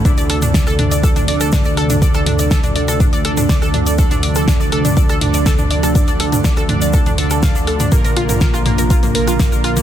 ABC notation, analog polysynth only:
X:1
M:4/4
L:1/8
Q:1/4=122
K:Dm
V:1 name="Analog polysynth"
[DAd]3 [DAd]2 [DAd]3 | [DAd]3 [DAd]2 [DAd]3 | [DAd]3 [DAd]2 [DAd]3 | [DAd]3 [DAd]2 [DAd]3 |
[B,FB]3 [B,FB]2 [B,FB]3 |]